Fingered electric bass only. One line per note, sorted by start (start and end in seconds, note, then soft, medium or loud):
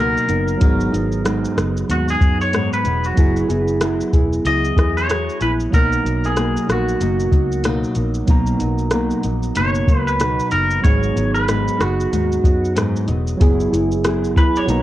0.00 0.16 C#2 medium
0.29 0.55 F#1 medium
0.61 0.87 G#1 loud
0.93 1.44 G#1 loud
1.57 1.83 F#1 medium
1.89 2.15 D#2 medium
2.21 2.72 F#2 medium
2.85 3.11 E1 medium
3.17 3.43 F#1 medium
3.49 4.00 F#1 medium
4.13 4.38 E1 medium
4.45 4.70 C#2 medium
4.76 5.28 E2 medium
5.41 5.66 A#1 medium
5.73 5.99 B1 loud
6.05 6.56 B1 loud
6.69 6.94 A#1 medium
7.01 7.26 F#1 medium
7.32 7.83 C#2 medium
7.96 8.22 A#1 medium
8.28 8.54 B1 loud
8.60 9.11 B1 medium
9.24 9.50 A#1 medium
9.56 9.82 F#1 medium
9.87 10.39 C#2 medium
10.52 10.78 F#1 medium
10.84 11.10 G#1 loud
11.16 11.67 G#1 loud
11.80 12.06 F#1 medium
12.12 12.38 D#2 medium
12.44 12.95 F#2 medium
13.08 13.34 E1 medium
13.41 13.66 F#1 loud
13.72 14.36 F#1 medium
14.36 14.62 E1 medium
14.68 14.82 B1 loud